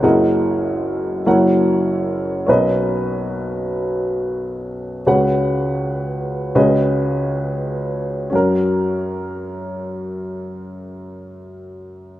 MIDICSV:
0, 0, Header, 1, 2, 480
1, 0, Start_track
1, 0, Key_signature, 6, "major"
1, 0, Tempo, 814111
1, 24, Time_signature, 6, 3, 24, 8
1, 1464, Tempo, 839161
1, 2424, Tempo, 902256
1, 2904, Tempo, 972447
1, 3384, Tempo, 1073345
1, 3864, Tempo, 1219512
1, 4344, Tempo, 1310044
1, 5762, End_track
2, 0, Start_track
2, 0, Title_t, "Upright piano"
2, 0, Program_c, 0, 0
2, 0, Control_c, 0, 64, 127
2, 15, Note_on_c, 0, 64, 60
2, 16, Note_on_c, 0, 30, 60
2, 17, Note_on_c, 0, 42, 62
2, 19, Note_on_c, 0, 68, 58
2, 19, Note_on_c, 0, 70, 54
2, 22, Note_on_c, 0, 75, 55
2, 24, Note_on_c, 0, 78, 68
2, 30, Control_c, 0, 64, 0
2, 124, Control_c, 0, 64, 127
2, 716, Note_off_c, 0, 30, 0
2, 717, Note_off_c, 0, 42, 0
2, 735, Note_off_c, 0, 64, 0
2, 739, Note_off_c, 0, 70, 0
2, 741, Note_off_c, 0, 68, 0
2, 743, Note_off_c, 0, 75, 0
2, 743, Note_off_c, 0, 78, 0
2, 744, Note_on_c, 0, 64, 65
2, 746, Note_on_c, 0, 30, 60
2, 746, Note_on_c, 0, 42, 60
2, 748, Note_on_c, 0, 66, 57
2, 748, Note_on_c, 0, 70, 59
2, 750, Control_c, 0, 64, 0
2, 751, Note_on_c, 0, 73, 61
2, 752, Note_on_c, 0, 78, 68
2, 854, Control_c, 0, 64, 127
2, 1442, Note_off_c, 0, 30, 0
2, 1442, Note_off_c, 0, 42, 0
2, 1453, Note_off_c, 0, 66, 0
2, 1453, Note_off_c, 0, 70, 0
2, 1453, Note_on_c, 0, 61, 64
2, 1462, Note_on_c, 0, 66, 54
2, 1462, Note_on_c, 0, 70, 54
2, 1464, Note_off_c, 0, 64, 0
2, 1464, Note_on_c, 0, 35, 59
2, 1466, Note_on_c, 0, 47, 58
2, 1468, Note_off_c, 0, 73, 0
2, 1468, Note_off_c, 0, 78, 0
2, 1469, Note_on_c, 0, 71, 58
2, 1472, Control_c, 0, 64, 0
2, 1472, Note_on_c, 0, 75, 68
2, 1560, Control_c, 0, 64, 127
2, 2878, Note_off_c, 0, 61, 0
2, 2882, Note_off_c, 0, 66, 0
2, 2882, Note_off_c, 0, 70, 0
2, 2883, Note_off_c, 0, 35, 0
2, 2884, Note_off_c, 0, 47, 0
2, 2885, Note_off_c, 0, 71, 0
2, 2887, Note_off_c, 0, 75, 0
2, 2904, Note_on_c, 0, 61, 54
2, 2905, Note_on_c, 0, 37, 53
2, 2906, Note_on_c, 0, 49, 54
2, 2906, Note_on_c, 0, 66, 56
2, 2907, Note_on_c, 0, 68, 51
2, 2907, Note_on_c, 0, 71, 50
2, 2911, Control_c, 0, 64, 0
2, 2911, Note_on_c, 0, 78, 68
2, 2995, Control_c, 0, 64, 127
2, 3601, Note_off_c, 0, 37, 0
2, 3601, Note_off_c, 0, 49, 0
2, 3607, Note_off_c, 0, 66, 0
2, 3607, Note_off_c, 0, 68, 0
2, 3608, Note_off_c, 0, 61, 0
2, 3610, Note_off_c, 0, 71, 0
2, 3614, Note_on_c, 0, 66, 52
2, 3614, Note_on_c, 0, 68, 55
2, 3615, Note_on_c, 0, 37, 59
2, 3615, Note_on_c, 0, 61, 64
2, 3616, Note_on_c, 0, 49, 60
2, 3617, Note_on_c, 0, 71, 53
2, 3617, Note_on_c, 0, 75, 69
2, 3621, Note_off_c, 0, 78, 0
2, 3623, Control_c, 0, 64, 0
2, 3693, Control_c, 0, 64, 127
2, 4326, Note_off_c, 0, 61, 0
2, 4328, Note_off_c, 0, 37, 0
2, 4328, Note_off_c, 0, 49, 0
2, 4332, Note_on_c, 0, 61, 61
2, 4338, Note_off_c, 0, 66, 0
2, 4343, Note_off_c, 0, 68, 0
2, 4344, Note_off_c, 0, 71, 0
2, 4344, Note_off_c, 0, 75, 0
2, 4344, Note_on_c, 0, 42, 61
2, 4344, Note_on_c, 0, 66, 56
2, 4349, Control_c, 0, 64, 0
2, 4353, Note_on_c, 0, 70, 69
2, 4417, Control_c, 0, 64, 127
2, 5762, Note_off_c, 0, 42, 0
2, 5762, Note_off_c, 0, 61, 0
2, 5762, Note_off_c, 0, 66, 0
2, 5762, Note_off_c, 0, 70, 0
2, 5762, End_track
0, 0, End_of_file